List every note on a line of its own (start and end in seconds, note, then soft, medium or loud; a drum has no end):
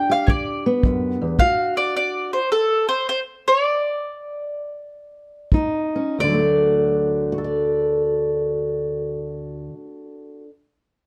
0.00 0.24 D3 medium
0.00 2.38 D4 medium
0.10 1.37 G4 medium
0.10 0.25 F5 medium
0.27 0.80 D3 medium
0.27 0.30 C#5 soft
0.27 0.63 D5 medium
0.27 kick medium
0.66 1.38 B3 medium
0.83 1.21 F#2 medium
0.83 kick medium
1.21 1.40 E2 medium
1.39 1.88 D2 medium
1.39 2.38 F#4 medium
1.39 1.77 F5 loud
1.39 kick medium
1.77 1.95 D5 medium
1.97 2.33 D5 medium
2.33 2.51 C5 medium
2.52 2.88 A4 medium
2.89 3.07 C5 medium
3.09 3.19 C5 medium
3.48 5.49 D5 medium
5.52 6.15 D#2 medium
5.52 6.17 D#4 medium
5.52 kick medium
5.96 6.16 C#4 medium
6.18 9.68 D2 medium
6.18 9.37 D5 medium
6.23 9.73 D3 medium
6.28 7.32 F#3 medium
6.33 7.38 A3 medium
6.39 7.32 F#4 medium
7.32 10.43 F#4 medium
7.38 10.46 A4 medium
7.44 10.49 D5 medium